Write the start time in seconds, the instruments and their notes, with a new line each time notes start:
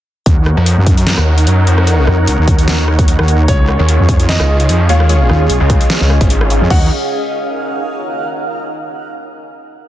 0.26 wobble bass D#2, supersaw synth D#4 A#4 C#5 F#5, ambient pad D#4, kick, closed hi-hat
0.41 ambient pad A#4
0.46 cross-stick
0.57 detuned saw bass F2
0.66 closed hi-hat
0.77 wobble bass F#2
0.86 kick, closed hi-hat
0.97 closed hi-hat
1.07 snare, closed hi-hat
1.18 detuned saw bass D#2, cross-stick
1.27 detuned saw bass D#2, ambient pad F#5
1.38 closed hi-hat
1.47 detuned saw bass F#2, closed hi-hat
1.67 detuned saw bass F2, closed hi-hat
1.78 cross-stick
1.87 closed hi-hat
2.07 wobble bass F2, cross-stick
2.27 wobble bass C#2, closed hi-hat
2.38 wobble bass D#2
2.48 kick, closed hi-hat
2.58 closed hi-hat
2.68 snare, closed hi-hat
2.88 cross-stick
2.99 kick, closed hi-hat
3.08 closed hi-hat
3.19 wobble bass D#2, cross-stick
3.28 closed hi-hat
3.48 wobble bass C#2, ambient pad C#4, grand piano C#4 C#5, kick, closed hi-hat
3.68 cross-stick
3.79 detuned saw bass D#2, ambient pad G#4
3.89 closed hi-hat
3.99 wobble bass F2
4.09 kick, closed hi-hat
4.20 closed hi-hat
4.29 grand piano D#4 D#5, snare, closed hi-hat
4.40 detuned saw bass C#2, cross-stick
4.45 ambient pad D#5
4.49 detuned saw bass C#2
4.60 closed hi-hat
4.69 detuned saw bass F2, closed hi-hat
4.89 detuned saw bass D#2, synth stab G#3 F4 C#5, grand piano F4 F5, closed hi-hat
4.94 ambient pad F5
5.00 cross-stick
5.09 synth stab G#3 F4 C#5, closed hi-hat
5.29 wobble bass D#2, cross-stick
5.50 wobble bass B1, closed hi-hat
5.60 detuned saw bass C#2
5.70 kick, closed hi-hat
5.81 closed hi-hat
5.90 snare, closed hi-hat
6.01 wobble bass C#2, snare
6.10 cross-stick
6.21 detuned saw bass G#1, kick, closed hi-hat
6.30 closed hi-hat
6.41 cross-stick
6.50 closed hi-hat
6.61 wobble bass F2
6.70 wobble bass D#2, synth stab F#3 D#4 C#5, ambient pad D#4, supersaw synth D#4 A#4 C#5 F#5, grand piano F#5, kick, crash
6.77 ambient pad A#4
6.83 ambient pad F5
6.89 ambient pad F#5